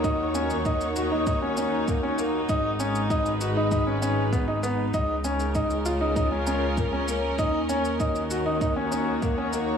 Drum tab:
SH |x-xxxxx-x-x-x-x-|x-xxxxx-x-x-x-x-|x-xxxxx-x-x-x-x-|x-xxxxx-x-x-x-x-|
BD |o---o---o---o---|o---o---o---o---|o---o---o---o---|o---o---o---o---|